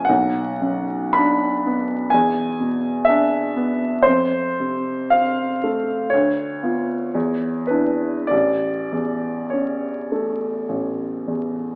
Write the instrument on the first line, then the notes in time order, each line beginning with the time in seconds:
upright piano
Already playing: F#1 C#2 C#4 E4 G#5 A5
0.05 F#5
0.09 B1
0.62 F#2
1.13 D4 B5
1.66 B3
2.10 E2 G#5
2.60 B2
3.05 D4 E5
3.57 B3
4.03 F2 C5
4.60 C3
5.10 C4 F5
5.64 A3
6.10 C#5
6.14 D2
6.63 B3 F4
7.15 E2
7.67 D4 E4 B4
8.27 A1 D5
8.92 E2
9.50 C#4 C#5
10.12 A3
10.69 A1
11.28 E2